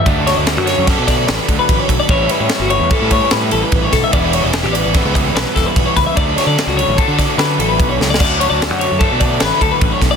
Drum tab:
CC |------------------------------|------------------------------|------------------------------|------------------------------|
RD |x--x--x--x--x--x--x--x--x--x--|x--x--x--x--x--x--x--x--x--x--|x--x--x--x--x--x--x--x--x--x--|x--x--x--x--x--x--x--x--x-----|
SD |---o--o--o--o--o--o-----------|------o-----------o--------o--|------o-----o-----o--o-----o--|---o--o--------o--o--------o-o|
BD |o-----------o--o-----o--o--o--|o-----------o--o--------o--o--|o-----------o--o-----o--o--o--|o-----------o--o--------o-----|

CC |x-----------------------------|
RD |---x--x--x--x--x--x--x--x--x--|
SD |------o-----------o--------o--|
BD |o-----------o--o-----o--o--o--|